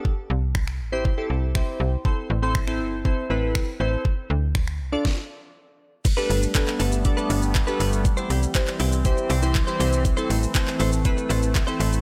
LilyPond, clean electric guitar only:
\new Staff \with { instrumentName = "Clean electric guitar" } { \time 4/4 \key g \mixolydian \tempo 4 = 120 r1 | r1 | r1 | r16 <d' a' b'>16 <d' a' b'>16 r8. <d' a' b'>16 r8 <d' a' b'>16 <d' a' b'>16 r8 <d' a' b'>16 <d' a' b'>16 r16 |
r16 <e' g' c''>16 <e' g' c''>16 r8. <e' g' c''>16 r8. <e' g' c''>16 r8 <e' g' c''>16 <e' g' c''>16 r16 | r16 <e' a' c''>16 <e' a' c''>16 r8. <e' a' c''>16 r8. <e' a' c''>16 r8 <e' a' c''>16 <e' a' c''>16 r16 | }